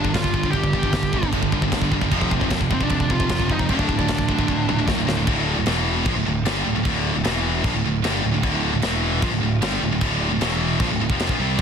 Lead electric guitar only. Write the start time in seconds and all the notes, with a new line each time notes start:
Already playing: D4
0.13 F4
0.52 G4
2.73 C4
2.83 D4
3.11 F4
3.51 D#4
3.70 D4